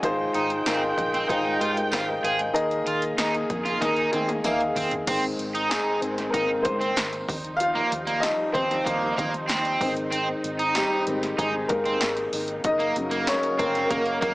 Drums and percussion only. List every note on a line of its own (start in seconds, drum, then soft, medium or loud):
0.03 kick loud
0.03 closed hi-hat medium
0.34 closed hi-hat medium
0.50 closed hi-hat medium
0.66 snare loud
0.66 closed hi-hat medium
0.66 tambourine medium
0.98 kick medium
0.98 closed hi-hat medium
1.14 closed hi-hat soft
1.29 kick medium
1.29 closed hi-hat medium
1.61 closed hi-hat medium
1.77 closed hi-hat soft
1.92 snare loud
1.92 closed hi-hat medium
1.92 tambourine medium
2.25 closed hi-hat medium
2.39 closed hi-hat soft
2.56 closed hi-hat medium
2.71 closed hi-hat soft
2.87 closed hi-hat medium
3.02 closed hi-hat medium
3.18 snare loud
3.18 closed hi-hat medium
3.18 tambourine medium
3.35 closed hi-hat soft
3.50 kick medium
3.50 closed hi-hat medium
3.66 snare soft
3.66 closed hi-hat medium
3.82 kick medium
3.82 snare medium
3.82 closed hi-hat medium
3.96 closed hi-hat soft
4.13 closed hi-hat medium
4.13 high tom medium
4.28 closed hi-hat soft
4.28 high tom medium
4.44 closed hi-hat medium
4.44 mid tom medium
4.44 tambourine medium
4.60 closed hi-hat soft
4.76 floor tom medium
4.76 open hi-hat medium
4.91 closed hi-hat medium
4.91 floor tom medium
5.07 kick loud
5.07 closed hi-hat loud
5.07 crash medium
5.39 closed hi-hat medium
5.55 closed hi-hat medium
5.71 snare loud
5.71 closed hi-hat loud
5.71 tambourine medium
6.02 closed hi-hat medium
6.18 snare soft
6.18 closed hi-hat soft
6.34 kick medium
6.34 closed hi-hat medium
6.65 kick medium
6.65 closed hi-hat medium
6.81 closed hi-hat soft
6.96 snare loud
6.96 closed hi-hat medium
6.96 tambourine medium
7.13 closed hi-hat soft
7.29 kick loud
7.29 open hi-hat medium
7.44 closed hi-hat soft
7.60 closed hi-hat medium
7.92 closed hi-hat medium
8.07 closed hi-hat medium
8.23 snare loud
8.23 closed hi-hat loud
8.23 tambourine medium
8.55 kick medium
8.55 closed hi-hat medium
8.71 snare soft
8.71 closed hi-hat medium
8.86 kick medium
8.86 closed hi-hat medium
9.18 kick medium
9.18 closed hi-hat medium
9.34 closed hi-hat soft
9.49 snare loud
9.49 closed hi-hat medium
9.49 tambourine medium
9.65 closed hi-hat soft
9.81 kick loud
9.81 open hi-hat medium
9.97 closed hi-hat medium
10.12 closed hi-hat loud
10.44 closed hi-hat medium
10.59 closed hi-hat medium
10.75 snare loud
10.75 closed hi-hat loud
10.75 tambourine medium
11.07 closed hi-hat medium
11.23 snare soft
11.23 closed hi-hat medium
11.39 kick medium
11.39 closed hi-hat medium
11.69 kick medium
11.69 closed hi-hat medium
11.86 closed hi-hat soft
12.01 snare loud
12.01 closed hi-hat medium
12.01 tambourine loud
12.17 closed hi-hat soft
12.33 open hi-hat medium
12.48 closed hi-hat medium
12.64 kick loud
12.64 closed hi-hat loud
12.80 closed hi-hat soft
12.96 closed hi-hat medium
13.11 closed hi-hat medium
13.27 snare loud
13.27 closed hi-hat loud
13.27 tambourine medium
13.43 closed hi-hat soft
13.59 kick medium
13.59 closed hi-hat medium
13.75 snare soft
13.75 closed hi-hat medium
13.90 kick medium
13.90 closed hi-hat medium
14.06 closed hi-hat soft
14.22 kick medium
14.22 closed hi-hat medium